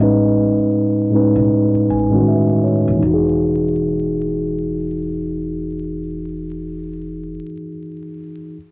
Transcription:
Already playing: tine electric piano A2 D#5
0.00 upright bass A1, tine electric piano G#3 C#4 D#4 B4
1.10 tine electric piano A2 G#3 C#4
1.15 tine electric piano D#4 B4
1.36 upright bass B1
1.74 muted upright bass stroke
1.90 upright bass A1, tine electric piano G#5
2.10 tine electric piano A2 G#3 C#4
2.14 tine electric piano D#3 F#4
2.28 tine electric piano E5
2.64 tine electric piano C#5
2.88 upright bass D#1
2.93 tine electric piano E3
3.00 upright bass E1, tine electric piano D#4
3.07 tine electric piano F#4
3.14 tine electric piano G#4

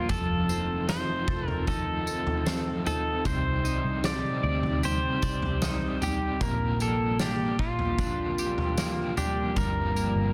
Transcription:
Already playing: clean electric guitar F3 F4, overdriven electric guitar A#3, pedal steel guitar F4, ambient pad F4
0.09 picked electric bass F1, ambient pad D#3 A3 C4, overdriven electric guitar F3 C4 D#4 A4, pedal steel guitar A4, kick, floor tom, tambourine
0.48 overdriven electric guitar D#4 A4, tambourine
0.52 overdriven electric guitar C4
0.87 overdriven electric guitar F3 C4 D#4 A4, pedal steel guitar C5, snare, tambourine
1.27 picked electric bass F1, overdriven electric guitar D#4 A4, kick, floor tom
1.31 overdriven electric guitar C4
1.48 pedal steel guitar A#4, floor tom
1.67 overdriven electric guitar F3 C4 D#4 A4, pedal steel guitar A4, kick, floor tom, tambourine
2.06 overdriven electric guitar D#4 A4, tambourine
2.11 overdriven electric guitar C4
2.27 floor tom
2.45 overdriven electric guitar F3 C4 D#4, snare, tambourine
2.50 overdriven electric guitar A4
2.84 overdriven electric guitar D#4 A4, pedal steel guitar A4, floor tom, tambourine
2.89 overdriven electric guitar C4
3.24 picked electric bass C2, overdriven electric guitar C3 G3 C4 D#4 G4 D5, ambient pad C3 G3 D#4, pedal steel guitar C5, kick, floor tom, tambourine
3.64 overdriven electric guitar D#4 G4 D5, tambourine
3.68 overdriven electric guitar C4
3.84 picked electric bass C2
4.03 overdriven electric guitar C4 D#4 G4, pedal steel guitar D5, snare, tambourine
4.07 overdriven electric guitar D5
4.43 picked electric bass D2, overdriven electric guitar D#4 G4 D5
4.47 overdriven electric guitar C4
4.63 floor tom
4.83 overdriven electric guitar C3 G3 C4 D#4 G4 D5, pedal steel guitar C5, floor tom, tambourine
5.22 picked electric bass C2, overdriven electric guitar D#4 G4 D5, kick, tambourine
5.26 overdriven electric guitar C4
5.42 floor tom
5.61 overdriven electric guitar C4 D#4 G4, snare, tambourine
5.65 overdriven electric guitar D5
6.00 overdriven electric guitar D#4 G4 D5, pedal steel guitar G4, floor tom, tambourine
6.05 overdriven electric guitar C4
6.40 picked electric bass A#1, overdriven electric guitar A#2 D3 F3 A#3 D4 G4, ambient pad A#3 F4, pedal steel guitar A#4, kick, floor tom, tambourine
6.79 overdriven electric guitar A#3 D4 G4, pedal steel guitar A4, tambourine
6.84 overdriven electric guitar F3
7.19 overdriven electric guitar F3 A#3 D4, pedal steel guitar G4, snare, tambourine
7.23 overdriven electric guitar G4
7.58 picked electric bass A#1, overdriven electric guitar A#3 D4 G4, clean electric guitar F4, pedal steel guitar F4, kick
7.63 overdriven electric guitar F3
7.79 clean electric guitar G4, floor tom
7.98 overdriven electric guitar A#2 D3 F3 A#3 D4 G4, kick, floor tom, tambourine
8.37 overdriven electric guitar A#3 D4 G4, tambourine
8.42 overdriven electric guitar F3
8.58 floor tom
8.77 overdriven electric guitar F3 A#3 D4, snare, tambourine
8.82 overdriven electric guitar G4
9.16 overdriven electric guitar A#3 D4 G4, pedal steel guitar G4, floor tom, tambourine
9.20 overdriven electric guitar F3
9.56 picked electric bass G1, overdriven electric guitar G2 D3 F3 A#3 F4 G4, ambient pad A#3 F4, pedal steel guitar A#4, kick, floor tom, tambourine
9.96 overdriven electric guitar A#3 F4 G4, tambourine
10.00 overdriven electric guitar F3
10.16 picked electric bass G1

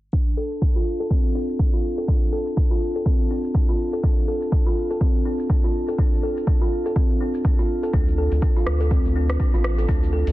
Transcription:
0.13 kalimba D4, kick, shaker
0.27 shaker
0.37 kalimba A4
0.52 shaker
0.62 kalimba D4, kick, shaker
0.76 kalimba F4, shaker
1.00 kalimba A4, shaker
1.10 kalimba C4, kick, shaker
1.25 shaker
1.35 kalimba D4
1.49 shaker
1.59 kalimba D4, kick, shaker
1.73 kalimba F4, shaker
1.98 kalimba A4, shaker
2.08 kalimba D4, kick, shaker
2.22 shaker
2.32 kalimba A4
2.47 shaker
2.57 kalimba D4, kick, shaker
2.71 kalimba F4, shaker
2.96 kalimba A4, shaker
3.06 kalimba C4, kick, shaker
3.20 shaker
3.30 kalimba D4
3.44 shaker
3.55 kalimba D4, kick, shaker
3.69 kalimba F4, shaker
3.93 kalimba A4, shaker
4.03 kalimba D4, kick, shaker
4.18 shaker
4.28 kalimba A4
4.42 shaker
4.52 kalimba D4, kick, shaker
4.66 kalimba F4, shaker
4.91 kalimba A4, shaker
5.01 kalimba C4, kick, shaker
5.15 shaker
5.25 kalimba D4
5.39 shaker
5.50 kalimba D4, kick, shaker
5.64 kalimba F4, shaker
5.88 kalimba A4, shaker
5.98 kalimba D4, kick, shaker
6.13 shaker
6.23 kalimba A4
6.37 shaker
6.47 kalimba D4, kick, shaker
6.61 kalimba F4, shaker
6.86 kalimba A4, shaker
6.96 kalimba C4, kick, shaker
7.10 shaker
7.20 kalimba D4
7.34 shaker
7.45 kalimba D4, kick, shaker
7.59 kalimba F4, shaker
7.83 kalimba A4, shaker
7.93 analog synth bass D2, kalimba D4, kick, closed hi-hat, shaker
8.08 shaker
8.18 kalimba A4
8.32 analog synth bass D2, closed hi-hat, shaker
8.42 kalimba D4, kick, closed hi-hat, shaker
8.56 kalimba F4, shaker
8.67 analog synth bass D2, cross-stick
8.81 kalimba A4, closed hi-hat, shaker
8.91 kalimba C4, kick, closed hi-hat, shaker
9.05 analog synth bass D2, shaker
9.15 kalimba D4
9.30 cross-stick, closed hi-hat, shaker
9.40 kalimba D4, kick, closed hi-hat, shaker
9.53 analog synth bass A1, kalimba F4, shaker
9.64 cross-stick
9.78 kalimba A4, closed hi-hat, shaker
9.88 analog synth bass D2, kalimba D4, kick, closed hi-hat, shaker
10.03 shaker
10.13 kalimba A4
10.27 analog synth bass D2, closed hi-hat, shaker

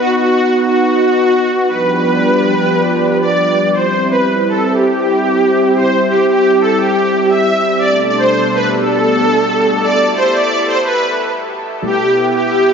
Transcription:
Already playing: analog synth pad B3 D#4 F#4
0.00 supersaw synth F#4
0.16 supersaw synth F#4
0.67 supersaw synth F#4
1.69 analog synth pad F3 G3 D4 G4, supersaw synth B4
3.22 supersaw synth D5
3.72 analog synth pad G3 C4 E4, supersaw synth C5
4.11 supersaw synth B4
4.49 supersaw synth A4
4.74 supersaw synth G4
5.76 supersaw synth C5
6.10 supersaw synth G4
6.27 supersaw synth G4
6.61 supersaw synth A4
6.78 supersaw synth G4
7.28 supersaw synth E5
7.79 analog synth pad B2 A3 D4 A4, supersaw synth D5
8.10 supersaw synth D5
8.17 supersaw synth C5
8.55 supersaw synth B4
8.80 supersaw synth A4
9.82 analog synth pad E4, supersaw synth D5
10.16 supersaw synth C5
10.33 supersaw synth D5
10.67 supersaw synth C5
10.84 supersaw synth B4
11.86 analog synth pad B3 E4 G4, supersaw synth G4
12.37 supersaw synth G4

